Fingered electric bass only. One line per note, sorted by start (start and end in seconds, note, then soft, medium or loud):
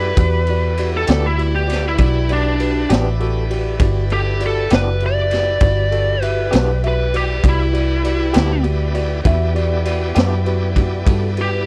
0.00 0.15 F#2 medium
0.17 1.06 E2 medium
1.08 1.97 D2 medium
1.99 2.88 B1 medium
2.90 3.78 A1 medium
3.80 4.69 G1 medium
4.72 5.60 F#1 medium
5.61 6.50 G1 medium
6.54 7.41 B1 medium
7.44 8.32 C2 medium
8.36 9.23 D2 medium
9.25 10.13 E2 medium
10.16 11.04 F#2 medium
11.07 11.66 G2 medium